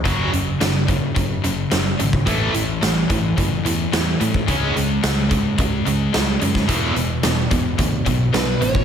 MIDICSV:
0, 0, Header, 1, 5, 480
1, 0, Start_track
1, 0, Key_signature, 3, "minor"
1, 0, Tempo, 552486
1, 49, Time_signature, 4, 2, 24, 8
1, 7685, End_track
2, 0, Start_track
2, 0, Title_t, "Lead electric guitar"
2, 0, Program_c, 0, 29
2, 7249, Note_on_c, 0, 71, 74
2, 7488, Note_on_c, 0, 73, 75
2, 7495, Note_off_c, 0, 71, 0
2, 7685, Note_off_c, 0, 73, 0
2, 7685, End_track
3, 0, Start_track
3, 0, Title_t, "Distorted electric guitar"
3, 0, Program_c, 1, 30
3, 37, Note_on_c, 1, 42, 72
3, 42, Note_on_c, 1, 49, 80
3, 43, Note_on_c, 1, 54, 87
3, 269, Note_off_c, 1, 42, 0
3, 272, Note_off_c, 1, 49, 0
3, 273, Note_off_c, 1, 54, 0
3, 284, Note_on_c, 1, 42, 66
3, 287, Note_on_c, 1, 49, 67
3, 504, Note_off_c, 1, 42, 0
3, 505, Note_off_c, 1, 49, 0
3, 524, Note_on_c, 1, 42, 64
3, 531, Note_on_c, 1, 49, 70
3, 744, Note_off_c, 1, 42, 0
3, 748, Note_off_c, 1, 49, 0
3, 765, Note_on_c, 1, 42, 62
3, 769, Note_on_c, 1, 49, 70
3, 985, Note_off_c, 1, 42, 0
3, 987, Note_off_c, 1, 49, 0
3, 999, Note_on_c, 1, 42, 60
3, 1003, Note_on_c, 1, 49, 63
3, 1222, Note_off_c, 1, 42, 0
3, 1224, Note_off_c, 1, 49, 0
3, 1249, Note_on_c, 1, 42, 62
3, 1252, Note_on_c, 1, 49, 75
3, 1468, Note_off_c, 1, 42, 0
3, 1469, Note_off_c, 1, 49, 0
3, 1487, Note_on_c, 1, 42, 68
3, 1491, Note_on_c, 1, 49, 76
3, 1707, Note_off_c, 1, 42, 0
3, 1709, Note_off_c, 1, 49, 0
3, 1729, Note_on_c, 1, 42, 57
3, 1731, Note_on_c, 1, 49, 66
3, 1948, Note_off_c, 1, 42, 0
3, 1949, Note_off_c, 1, 49, 0
3, 1965, Note_on_c, 1, 45, 70
3, 1967, Note_on_c, 1, 52, 87
3, 1973, Note_on_c, 1, 57, 88
3, 2196, Note_off_c, 1, 45, 0
3, 2197, Note_off_c, 1, 52, 0
3, 2200, Note_off_c, 1, 57, 0
3, 2206, Note_on_c, 1, 45, 66
3, 2208, Note_on_c, 1, 52, 71
3, 2427, Note_off_c, 1, 45, 0
3, 2428, Note_off_c, 1, 52, 0
3, 2444, Note_on_c, 1, 45, 67
3, 2446, Note_on_c, 1, 52, 73
3, 2666, Note_off_c, 1, 45, 0
3, 2667, Note_off_c, 1, 52, 0
3, 2691, Note_on_c, 1, 45, 70
3, 2694, Note_on_c, 1, 52, 71
3, 2909, Note_off_c, 1, 45, 0
3, 2911, Note_off_c, 1, 52, 0
3, 2927, Note_on_c, 1, 45, 67
3, 2932, Note_on_c, 1, 52, 73
3, 3148, Note_off_c, 1, 45, 0
3, 3150, Note_off_c, 1, 52, 0
3, 3169, Note_on_c, 1, 45, 65
3, 3175, Note_on_c, 1, 52, 74
3, 3389, Note_off_c, 1, 45, 0
3, 3392, Note_off_c, 1, 52, 0
3, 3410, Note_on_c, 1, 45, 69
3, 3413, Note_on_c, 1, 52, 81
3, 3629, Note_off_c, 1, 45, 0
3, 3631, Note_off_c, 1, 52, 0
3, 3649, Note_on_c, 1, 45, 69
3, 3651, Note_on_c, 1, 52, 72
3, 3869, Note_off_c, 1, 45, 0
3, 3870, Note_off_c, 1, 52, 0
3, 3887, Note_on_c, 1, 49, 68
3, 3892, Note_on_c, 1, 56, 85
3, 3896, Note_on_c, 1, 61, 80
3, 4113, Note_off_c, 1, 49, 0
3, 4117, Note_off_c, 1, 56, 0
3, 4122, Note_off_c, 1, 61, 0
3, 4123, Note_on_c, 1, 49, 68
3, 4127, Note_on_c, 1, 56, 67
3, 4346, Note_off_c, 1, 49, 0
3, 4348, Note_off_c, 1, 56, 0
3, 4368, Note_on_c, 1, 49, 66
3, 4371, Note_on_c, 1, 56, 74
3, 4588, Note_off_c, 1, 49, 0
3, 4589, Note_off_c, 1, 56, 0
3, 4601, Note_on_c, 1, 49, 66
3, 4604, Note_on_c, 1, 56, 70
3, 4824, Note_off_c, 1, 49, 0
3, 4826, Note_off_c, 1, 56, 0
3, 4848, Note_on_c, 1, 49, 65
3, 4850, Note_on_c, 1, 56, 77
3, 5067, Note_off_c, 1, 49, 0
3, 5069, Note_off_c, 1, 56, 0
3, 5087, Note_on_c, 1, 49, 65
3, 5090, Note_on_c, 1, 56, 72
3, 5307, Note_off_c, 1, 49, 0
3, 5309, Note_off_c, 1, 56, 0
3, 5325, Note_on_c, 1, 49, 66
3, 5328, Note_on_c, 1, 56, 75
3, 5546, Note_off_c, 1, 49, 0
3, 5547, Note_off_c, 1, 56, 0
3, 5559, Note_on_c, 1, 49, 69
3, 5562, Note_on_c, 1, 56, 69
3, 5782, Note_off_c, 1, 49, 0
3, 5784, Note_off_c, 1, 56, 0
3, 5803, Note_on_c, 1, 40, 74
3, 5805, Note_on_c, 1, 47, 72
3, 5809, Note_on_c, 1, 52, 83
3, 6030, Note_off_c, 1, 40, 0
3, 6035, Note_off_c, 1, 47, 0
3, 6037, Note_off_c, 1, 52, 0
3, 6040, Note_on_c, 1, 40, 59
3, 6044, Note_on_c, 1, 47, 64
3, 6262, Note_off_c, 1, 40, 0
3, 6264, Note_off_c, 1, 47, 0
3, 6283, Note_on_c, 1, 40, 63
3, 6285, Note_on_c, 1, 47, 74
3, 6503, Note_off_c, 1, 40, 0
3, 6504, Note_off_c, 1, 47, 0
3, 6522, Note_on_c, 1, 40, 64
3, 6527, Note_on_c, 1, 47, 69
3, 6742, Note_off_c, 1, 40, 0
3, 6745, Note_off_c, 1, 47, 0
3, 6761, Note_on_c, 1, 40, 71
3, 6765, Note_on_c, 1, 47, 78
3, 6981, Note_off_c, 1, 40, 0
3, 6983, Note_off_c, 1, 47, 0
3, 6998, Note_on_c, 1, 40, 66
3, 7002, Note_on_c, 1, 47, 74
3, 7219, Note_off_c, 1, 40, 0
3, 7221, Note_off_c, 1, 47, 0
3, 7236, Note_on_c, 1, 40, 66
3, 7242, Note_on_c, 1, 47, 69
3, 7458, Note_off_c, 1, 40, 0
3, 7460, Note_off_c, 1, 47, 0
3, 7479, Note_on_c, 1, 40, 62
3, 7484, Note_on_c, 1, 47, 73
3, 7685, Note_off_c, 1, 40, 0
3, 7685, Note_off_c, 1, 47, 0
3, 7685, End_track
4, 0, Start_track
4, 0, Title_t, "Picked electric bass"
4, 0, Program_c, 2, 34
4, 50, Note_on_c, 2, 30, 84
4, 231, Note_off_c, 2, 30, 0
4, 293, Note_on_c, 2, 30, 71
4, 473, Note_off_c, 2, 30, 0
4, 536, Note_on_c, 2, 30, 84
4, 895, Note_off_c, 2, 30, 0
4, 1013, Note_on_c, 2, 30, 90
4, 1194, Note_off_c, 2, 30, 0
4, 1257, Note_on_c, 2, 30, 78
4, 1436, Note_off_c, 2, 30, 0
4, 1499, Note_on_c, 2, 30, 84
4, 1678, Note_off_c, 2, 30, 0
4, 1746, Note_on_c, 2, 32, 84
4, 1922, Note_off_c, 2, 32, 0
4, 1971, Note_on_c, 2, 33, 84
4, 2153, Note_off_c, 2, 33, 0
4, 2225, Note_on_c, 2, 33, 80
4, 2402, Note_off_c, 2, 33, 0
4, 2459, Note_on_c, 2, 33, 80
4, 2638, Note_off_c, 2, 33, 0
4, 2696, Note_on_c, 2, 33, 84
4, 2876, Note_off_c, 2, 33, 0
4, 2936, Note_on_c, 2, 30, 86
4, 3117, Note_off_c, 2, 30, 0
4, 3173, Note_on_c, 2, 40, 79
4, 3355, Note_off_c, 2, 40, 0
4, 3413, Note_on_c, 2, 40, 80
4, 3595, Note_off_c, 2, 40, 0
4, 3655, Note_on_c, 2, 45, 82
4, 3836, Note_off_c, 2, 45, 0
4, 3897, Note_on_c, 2, 37, 92
4, 4077, Note_off_c, 2, 37, 0
4, 4145, Note_on_c, 2, 37, 79
4, 4322, Note_off_c, 2, 37, 0
4, 4377, Note_on_c, 2, 37, 80
4, 4737, Note_off_c, 2, 37, 0
4, 4855, Note_on_c, 2, 37, 94
4, 5035, Note_off_c, 2, 37, 0
4, 5095, Note_on_c, 2, 37, 85
4, 5275, Note_off_c, 2, 37, 0
4, 5344, Note_on_c, 2, 37, 81
4, 5520, Note_off_c, 2, 37, 0
4, 5577, Note_on_c, 2, 42, 80
4, 5756, Note_off_c, 2, 42, 0
4, 5813, Note_on_c, 2, 28, 83
4, 5994, Note_off_c, 2, 28, 0
4, 6050, Note_on_c, 2, 28, 76
4, 6231, Note_off_c, 2, 28, 0
4, 6292, Note_on_c, 2, 28, 81
4, 6472, Note_off_c, 2, 28, 0
4, 6528, Note_on_c, 2, 28, 79
4, 6709, Note_off_c, 2, 28, 0
4, 6768, Note_on_c, 2, 38, 90
4, 6949, Note_off_c, 2, 38, 0
4, 7004, Note_on_c, 2, 35, 75
4, 7186, Note_off_c, 2, 35, 0
4, 7247, Note_on_c, 2, 35, 81
4, 7427, Note_off_c, 2, 35, 0
4, 7483, Note_on_c, 2, 33, 81
4, 7664, Note_off_c, 2, 33, 0
4, 7685, End_track
5, 0, Start_track
5, 0, Title_t, "Drums"
5, 48, Note_on_c, 9, 36, 106
5, 49, Note_on_c, 9, 42, 76
5, 134, Note_off_c, 9, 36, 0
5, 136, Note_off_c, 9, 42, 0
5, 290, Note_on_c, 9, 42, 57
5, 377, Note_off_c, 9, 42, 0
5, 530, Note_on_c, 9, 42, 80
5, 532, Note_on_c, 9, 38, 106
5, 617, Note_off_c, 9, 42, 0
5, 619, Note_off_c, 9, 38, 0
5, 768, Note_on_c, 9, 36, 76
5, 769, Note_on_c, 9, 42, 62
5, 855, Note_off_c, 9, 36, 0
5, 855, Note_off_c, 9, 42, 0
5, 1010, Note_on_c, 9, 36, 95
5, 1011, Note_on_c, 9, 42, 82
5, 1097, Note_off_c, 9, 36, 0
5, 1098, Note_off_c, 9, 42, 0
5, 1250, Note_on_c, 9, 42, 63
5, 1337, Note_off_c, 9, 42, 0
5, 1488, Note_on_c, 9, 42, 80
5, 1490, Note_on_c, 9, 38, 93
5, 1575, Note_off_c, 9, 42, 0
5, 1577, Note_off_c, 9, 38, 0
5, 1733, Note_on_c, 9, 42, 64
5, 1820, Note_off_c, 9, 42, 0
5, 1852, Note_on_c, 9, 36, 78
5, 1938, Note_off_c, 9, 36, 0
5, 1969, Note_on_c, 9, 42, 84
5, 1971, Note_on_c, 9, 36, 90
5, 2056, Note_off_c, 9, 42, 0
5, 2058, Note_off_c, 9, 36, 0
5, 2209, Note_on_c, 9, 42, 64
5, 2296, Note_off_c, 9, 42, 0
5, 2455, Note_on_c, 9, 42, 93
5, 2456, Note_on_c, 9, 38, 106
5, 2542, Note_off_c, 9, 42, 0
5, 2543, Note_off_c, 9, 38, 0
5, 2692, Note_on_c, 9, 42, 64
5, 2693, Note_on_c, 9, 36, 84
5, 2779, Note_off_c, 9, 42, 0
5, 2780, Note_off_c, 9, 36, 0
5, 2935, Note_on_c, 9, 36, 99
5, 2936, Note_on_c, 9, 42, 79
5, 3022, Note_off_c, 9, 36, 0
5, 3023, Note_off_c, 9, 42, 0
5, 3176, Note_on_c, 9, 42, 64
5, 3263, Note_off_c, 9, 42, 0
5, 3416, Note_on_c, 9, 42, 81
5, 3418, Note_on_c, 9, 38, 100
5, 3503, Note_off_c, 9, 42, 0
5, 3505, Note_off_c, 9, 38, 0
5, 3655, Note_on_c, 9, 42, 62
5, 3742, Note_off_c, 9, 42, 0
5, 3774, Note_on_c, 9, 36, 82
5, 3861, Note_off_c, 9, 36, 0
5, 3894, Note_on_c, 9, 36, 90
5, 3895, Note_on_c, 9, 42, 80
5, 3981, Note_off_c, 9, 36, 0
5, 3982, Note_off_c, 9, 42, 0
5, 4140, Note_on_c, 9, 42, 61
5, 4227, Note_off_c, 9, 42, 0
5, 4374, Note_on_c, 9, 42, 86
5, 4376, Note_on_c, 9, 38, 105
5, 4461, Note_off_c, 9, 42, 0
5, 4463, Note_off_c, 9, 38, 0
5, 4611, Note_on_c, 9, 42, 59
5, 4613, Note_on_c, 9, 36, 78
5, 4698, Note_off_c, 9, 42, 0
5, 4700, Note_off_c, 9, 36, 0
5, 4852, Note_on_c, 9, 36, 103
5, 4853, Note_on_c, 9, 42, 79
5, 4939, Note_off_c, 9, 36, 0
5, 4940, Note_off_c, 9, 42, 0
5, 5093, Note_on_c, 9, 42, 56
5, 5180, Note_off_c, 9, 42, 0
5, 5334, Note_on_c, 9, 42, 80
5, 5336, Note_on_c, 9, 38, 101
5, 5421, Note_off_c, 9, 42, 0
5, 5423, Note_off_c, 9, 38, 0
5, 5572, Note_on_c, 9, 42, 65
5, 5659, Note_off_c, 9, 42, 0
5, 5691, Note_on_c, 9, 36, 75
5, 5695, Note_on_c, 9, 38, 32
5, 5778, Note_off_c, 9, 36, 0
5, 5782, Note_off_c, 9, 38, 0
5, 5810, Note_on_c, 9, 36, 88
5, 5810, Note_on_c, 9, 42, 90
5, 5897, Note_off_c, 9, 36, 0
5, 5897, Note_off_c, 9, 42, 0
5, 6048, Note_on_c, 9, 42, 64
5, 6135, Note_off_c, 9, 42, 0
5, 6283, Note_on_c, 9, 42, 89
5, 6285, Note_on_c, 9, 38, 106
5, 6370, Note_off_c, 9, 42, 0
5, 6372, Note_off_c, 9, 38, 0
5, 6527, Note_on_c, 9, 36, 86
5, 6527, Note_on_c, 9, 42, 66
5, 6614, Note_off_c, 9, 36, 0
5, 6614, Note_off_c, 9, 42, 0
5, 6765, Note_on_c, 9, 42, 83
5, 6766, Note_on_c, 9, 36, 98
5, 6852, Note_off_c, 9, 42, 0
5, 6853, Note_off_c, 9, 36, 0
5, 7005, Note_on_c, 9, 36, 73
5, 7006, Note_on_c, 9, 42, 65
5, 7092, Note_off_c, 9, 36, 0
5, 7093, Note_off_c, 9, 42, 0
5, 7246, Note_on_c, 9, 42, 82
5, 7248, Note_on_c, 9, 38, 94
5, 7333, Note_off_c, 9, 42, 0
5, 7335, Note_off_c, 9, 38, 0
5, 7485, Note_on_c, 9, 42, 63
5, 7572, Note_off_c, 9, 42, 0
5, 7600, Note_on_c, 9, 36, 81
5, 7685, Note_off_c, 9, 36, 0
5, 7685, End_track
0, 0, End_of_file